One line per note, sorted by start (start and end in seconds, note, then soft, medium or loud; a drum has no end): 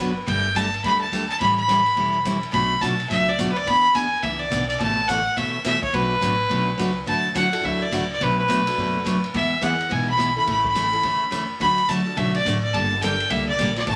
0.00 0.16 F#1 medium
0.00 0.10 B3 medium
0.00 0.11 D4 medium
0.00 0.11 F#4 medium
0.00 0.12 B4 loud
0.27 0.72 G1 medium
0.27 0.47 G3 medium
0.27 0.47 A3 medium
0.27 0.47 D4 medium
0.27 0.47 A4 medium
0.27 0.57 G5 loud
0.27 kick soft
0.27 ride medium
0.55 0.66 G3 medium
0.55 0.66 A3 medium
0.55 0.67 D4 medium
0.55 0.67 A4 medium
0.55 0.84 A5 loud
0.55 kick soft
0.55 hi-hat pedal medium
0.55 ride medium
0.74 ride soft
0.84 1.29 D2 medium
0.84 1.03 G3 medium
0.84 1.04 A3 medium
0.84 1.04 D4 medium
0.84 1.04 A4 medium
0.84 1.00 B5 loud
0.84 kick soft
0.84 ride medium
1.02 1.28 A5 loud
1.12 1.23 G3 medium
1.12 1.23 A3 medium
1.12 1.23 D4 medium
1.12 1.24 A4 medium
1.12 kick soft
1.12 hi-hat pedal medium
1.12 ride medium
1.30 1.40 A5 medium
1.30 ride soft
1.40 1.85 A1 medium
1.40 1.60 E3 medium
1.40 1.60 G3 medium
1.40 1.60 C#4 medium
1.40 1.60 E4 medium
1.40 1.60 A4 medium
1.40 1.56 B5 loud
1.40 kick soft
1.40 ride medium
1.58 2.38 B5 loud
1.68 1.79 E3 medium
1.68 1.79 G3 medium
1.68 1.80 C#4 medium
1.68 1.80 E4 medium
1.68 1.80 A4 medium
1.68 kick soft
1.68 hi-hat pedal medium
1.68 ride medium
1.86 ride soft
1.96 2.42 E1 medium
1.96 2.16 E3 soft
1.96 2.17 G3 medium
1.96 2.17 C#4 medium
1.96 2.17 E4 medium
1.96 2.17 A4 medium
1.96 kick soft
1.96 ride medium
2.25 2.36 E3 medium
2.25 2.36 G3 medium
2.25 2.36 C#4 medium
2.25 2.37 E4 medium
2.25 2.37 A4 medium
2.25 kick soft
2.25 hi-hat pedal medium
2.25 ride medium
2.43 ride soft
2.51 2.76 B1 medium
2.51 2.73 B2 medium
2.51 2.73 F#3 medium
2.51 2.73 A3 medium
2.51 2.73 D4 medium
2.51 2.73 F#4 medium
2.51 2.83 B5 loud
2.51 kick soft
2.51 ride medium
2.81 3.06 B1 medium
2.81 2.92 B2 medium
2.81 2.92 F#3 medium
2.81 2.93 A3 medium
2.81 2.93 D4 medium
2.81 2.93 F#4 medium
2.81 3.09 A5 loud
2.81 kick soft
2.81 hi-hat pedal medium
2.81 ride medium
3.00 ride soft
3.10 3.34 C#2 medium
3.10 3.29 B2 soft
3.10 3.29 F#3 medium
3.10 3.30 A3 medium
3.10 3.30 D4 medium
3.10 3.30 F#4 medium
3.10 3.30 E5 medium
3.10 kick soft
3.10 ride medium
3.29 3.52 D5 medium
3.38 3.62 D2 medium
3.38 3.49 B2 medium
3.38 3.49 F#3 medium
3.38 3.50 A3 medium
3.38 3.50 D4 medium
3.38 3.50 F#4 medium
3.38 kick soft
3.38 hi-hat pedal medium
3.38 ride medium
3.52 3.58 B4 medium
3.56 3.69 D5 medium
3.56 ride soft
3.66 4.12 E2 medium
3.66 3.86 E3 medium
3.66 3.86 B3 medium
3.66 3.86 D4 medium
3.66 3.86 G#4 medium
3.66 3.96 B5 loud
3.66 kick soft
3.66 ride medium
3.94 4.06 E3 medium
3.94 4.06 B3 medium
3.94 4.06 D4 medium
3.94 4.06 G#4 medium
3.94 4.24 G#5 loud
3.94 kick soft
3.94 hi-hat pedal medium
3.94 ride medium
4.23 4.47 C#2 medium
4.23 4.43 E3 medium
4.23 4.43 B3 medium
4.23 4.43 D4 medium
4.23 4.43 G#4 medium
4.23 4.41 E5 medium
4.23 kick soft
4.23 ride medium
4.39 4.68 D5 medium
4.50 4.76 B1 medium
4.50 4.62 E3 medium
4.50 4.62 B3 medium
4.50 4.62 D4 medium
4.50 4.63 G#4 medium
4.50 kick soft
4.50 hi-hat pedal medium
4.50 ride medium
4.69 4.79 D5 medium
4.69 ride soft
4.79 5.25 A1 medium
4.79 4.99 B2 medium
4.79 4.99 E3 medium
4.79 4.99 A3 medium
4.79 4.99 C#4 medium
4.79 5.00 A4 medium
4.79 5.09 A5 loud
4.79 kick soft
4.79 ride medium
5.08 5.19 B2 medium
5.08 5.19 E3 medium
5.08 5.20 A3 medium
5.08 5.20 C#4 medium
5.08 5.20 A4 medium
5.08 5.38 F#5 medium
5.08 kick soft
5.08 hi-hat pedal medium
5.08 ride medium
5.36 5.82 E2 medium
5.36 5.56 B2 medium
5.36 5.56 E3 medium
5.36 5.56 A3 medium
5.36 5.57 C#4 medium
5.36 5.57 A4 medium
5.36 5.65 E5 medium
5.36 kick soft
5.36 ride medium
5.64 5.76 B2 medium
5.64 5.76 E3 medium
5.64 5.76 A3 medium
5.64 5.76 C#4 medium
5.64 5.76 A4 medium
5.64 5.81 E5 medium
5.64 kick soft
5.64 snare soft
5.64 hi-hat pedal medium
5.64 ride medium
5.82 5.95 C#5 medium
5.82 kick medium
5.82 ride soft
5.93 6.16 B1 medium
5.93 6.12 B2 medium
5.93 6.13 F#3 medium
5.93 6.13 A3 medium
5.93 6.13 D4 medium
5.93 6.13 F#4 medium
5.93 6.96 B4 loud
5.93 kick soft
5.93 ride medium
6.21 6.45 A1 medium
6.21 6.32 B2 medium
6.21 6.32 F#3 medium
6.21 6.32 A3 medium
6.21 6.33 D4 medium
6.21 6.33 F#4 medium
6.21 kick soft
6.21 hi-hat pedal medium
6.21 ride medium
6.49 6.74 B1 medium
6.49 6.69 B2 medium
6.49 6.69 F#3 medium
6.49 6.69 A3 medium
6.49 6.69 D4 medium
6.49 6.70 F#4 medium
6.49 kick soft
6.49 ride medium
6.78 7.02 C#2 medium
6.78 6.89 B2 medium
6.78 6.89 F#3 medium
6.78 6.89 A3 medium
6.78 6.90 D4 medium
6.78 6.90 F#4 medium
6.78 kick soft
6.78 hi-hat pedal medium
6.78 ride medium
7.06 7.29 D2 medium
7.06 7.26 D3 medium
7.06 7.26 F#3 medium
7.06 7.26 A3 medium
7.06 7.26 E4 medium
7.06 7.26 F#4 medium
7.06 7.33 A5 medium
7.06 kick soft
7.06 ride medium
7.35 7.59 E2 medium
7.35 7.46 D3 medium
7.35 7.46 F#3 medium
7.35 7.46 A3 medium
7.35 7.46 E4 medium
7.35 7.46 F#4 medium
7.35 7.66 F#5 medium
7.35 kick soft
7.35 hi-hat pedal medium
7.35 ride medium
7.52 7.89 A3 medium
7.52 7.89 D4 medium
7.52 7.89 E4 medium
7.52 7.90 F#4 medium
7.52 7.90 A4 medium
7.52 ride medium
7.63 7.88 D2 medium
7.63 7.83 D3 medium
7.63 7.83 F#3 medium
7.63 7.83 A3 medium
7.63 7.83 E4 medium
7.63 7.83 F#4 medium
7.63 7.84 E5 medium
7.63 kick soft
7.83 8.10 D5 medium
7.91 8.16 C#2 medium
7.91 8.02 D3 medium
7.91 8.03 F#3 medium
7.91 8.03 A3 medium
7.91 8.03 E4 medium
7.91 8.03 F#4 medium
7.91 kick soft
7.91 hi-hat pedal medium
7.91 ride medium
8.12 8.25 D5 medium
8.20 8.66 B1 medium
8.20 8.40 B2 soft
8.20 8.40 F#3 medium
8.20 8.40 A3 medium
8.20 8.40 D4 medium
8.20 8.40 F#4 medium
8.20 8.39 B4 medium
8.20 kick soft
8.20 ride medium
8.40 9.19 B4 medium
8.48 8.59 B2 medium
8.48 8.59 F#3 medium
8.48 8.59 A3 medium
8.48 8.60 D4 medium
8.48 8.60 F#4 medium
8.48 kick soft
8.48 hi-hat pedal medium
8.48 ride medium
8.66 9.03 A3 medium
8.66 9.03 B3 medium
8.66 9.03 D4 medium
8.66 9.03 F#4 medium
8.66 9.03 A4 medium
8.66 ride medium
8.77 9.23 F#1 medium
8.77 8.96 B2 medium
8.77 8.97 F#3 medium
8.77 8.97 A3 medium
8.77 8.97 D4 medium
8.77 8.97 F#4 medium
8.77 kick soft
9.05 9.16 B2 medium
9.05 9.16 F#3 medium
9.05 9.16 A3 medium
9.05 9.17 D4 medium
9.05 9.17 F#4 medium
9.05 kick soft
9.05 hi-hat pedal medium
9.05 ride medium
9.24 ride soft
9.34 9.79 E2 medium
9.34 9.53 E3 medium
9.34 9.53 G#3 medium
9.34 9.53 B3 medium
9.34 9.54 E4 medium
9.34 9.54 G#4 medium
9.34 9.65 E5 loud
9.34 kick soft
9.34 ride medium
9.61 9.72 E3 medium
9.61 10.04 E3 medium
9.61 10.04 G#3 medium
9.61 9.73 G#3 medium
9.61 9.73 B3 medium
9.61 10.04 B3 medium
9.61 9.73 E4 medium
9.61 10.04 E4 medium
9.61 9.73 G#4 medium
9.61 10.04 G#4 medium
9.61 9.93 F#5 medium
9.61 kick soft
9.61 hi-hat pedal medium
9.61 ride medium
9.80 ride soft
9.89 10.36 B1 medium
9.89 10.09 E3 medium
9.89 10.09 G#3 medium
9.89 10.09 B3 medium
9.89 10.10 E4 medium
9.89 10.10 G#4 medium
9.89 10.08 G#5 medium
9.89 kick soft
9.89 ride medium
10.10 10.35 B5 medium
10.17 10.29 E3 medium
10.17 10.29 G#3 medium
10.17 10.29 B3 medium
10.17 10.29 E4 medium
10.17 10.29 G#4 medium
10.17 kick soft
10.17 hi-hat pedal medium
10.17 ride medium
10.36 10.73 E3 medium
10.36 10.73 A3 medium
10.36 10.73 C#4 medium
10.36 10.73 E4 medium
10.36 10.73 A4 medium
10.36 10.47 B5 medium
10.46 10.92 A1 medium
10.46 10.66 C#3 medium
10.46 10.66 E3 medium
10.46 10.66 A3 medium
10.46 10.67 C#4 medium
10.46 10.67 A4 medium
10.46 10.64 B5 medium
10.46 kick soft
10.46 ride medium
10.64 11.47 B5 loud
10.64 kick medium
10.75 10.86 C#3 medium
10.75 10.86 E3 medium
10.75 10.86 A3 medium
10.75 10.87 C#4 medium
10.75 10.86 A4 medium
10.75 kick soft
10.75 hi-hat pedal medium
10.75 ride medium
10.92 11.02 E3 medium
10.92 11.02 A3 medium
10.92 11.02 C#4 medium
10.92 11.02 E4 medium
10.92 11.03 A4 medium
10.92 ride soft
11.03 11.49 E2 medium
11.03 11.23 C#3 medium
11.03 11.23 E3 medium
11.03 11.23 A3 medium
11.03 11.23 C#4 medium
11.03 11.24 A4 medium
11.03 kick soft
11.03 ride medium
11.31 11.42 C#3 medium
11.31 11.43 E3 medium
11.31 11.42 A3 medium
11.31 11.43 C#4 medium
11.31 11.43 A4 medium
11.31 kick soft
11.31 hi-hat pedal medium
11.31 ride medium
11.60 12.05 D2 medium
11.60 11.79 D3 medium
11.60 11.80 F#3 medium
11.60 11.80 A3 medium
11.60 11.80 D4 medium
11.60 11.80 F#4 medium
11.60 11.91 B5 loud
11.60 kick soft
11.60 ride medium
11.78 ride soft
11.88 12.00 D3 medium
11.88 12.00 F#3 medium
11.88 12.00 A3 medium
11.88 12.00 D4 medium
11.88 12.00 F#4 medium
11.88 12.19 A5 medium
11.88 kick soft
11.88 hi-hat pedal medium
11.88 ride medium
12.05 12.15 F#3 medium
12.05 12.16 A3 medium
12.05 12.16 D4 medium
12.05 12.16 F#4 medium
12.05 12.16 A4 medium
12.17 12.41 B1 medium
12.17 12.36 D3 soft
12.17 12.37 F#3 medium
12.17 12.37 A3 medium
12.17 12.37 D4 medium
12.17 12.37 F#4 medium
12.17 12.34 E5 medium
12.17 kick soft
12.17 ride medium
12.35 12.61 D5 medium
12.35 ride soft
12.45 12.69 A1 medium
12.45 12.56 D3 medium
12.45 12.56 F#3 medium
12.45 12.57 A3 medium
12.45 12.57 D4 medium
12.45 12.57 F#4 medium
12.45 kick soft
12.45 hi-hat pedal medium
12.45 ride medium
12.64 12.75 D5 medium
12.73 13.19 G1 medium
12.73 12.93 D3 medium
12.73 12.93 G3 medium
12.73 12.93 A#3 medium
12.73 12.93 D4 medium
12.73 12.93 A4 medium
12.73 13.02 A5 loud
12.73 kick soft
12.73 ride medium
13.01 13.13 D3 medium
13.01 13.13 G3 medium
13.01 13.44 A3 medium
13.01 13.44 A#3 medium
13.01 13.14 A#3 medium
13.01 13.44 D4 medium
13.01 13.14 D4 medium
13.01 13.44 G4 medium
13.01 13.44 A4 medium
13.01 13.14 A4 medium
13.01 13.32 G5 medium
13.01 kick soft
13.01 hi-hat pedal medium
13.01 ride medium
13.20 ride soft
13.30 13.54 C#2 medium
13.30 13.50 D3 medium
13.30 13.50 G3 medium
13.30 13.50 A#3 medium
13.30 13.50 D4 medium
13.30 13.50 A4 medium
13.30 13.48 E5 medium
13.30 kick soft
13.30 ride medium
13.49 13.75 D5 medium
13.59 13.83 A#1 medium
13.59 13.70 D3 medium
13.59 13.70 G3 medium
13.59 13.70 A#3 medium
13.59 13.70 D4 medium
13.59 13.70 A4 medium
13.59 kick soft
13.59 hi-hat pedal medium
13.59 ride medium
13.76 13.87 D5 medium
13.76 snare soft
13.76 ride soft
13.87 13.96 A1 medium
13.87 13.96 B2 medium
13.87 13.96 E3 medium
13.87 13.96 A3 medium
13.87 13.96 C#4 medium
13.87 13.96 A4 medium
13.87 13.96 A5 medium
13.87 kick soft
13.87 ride medium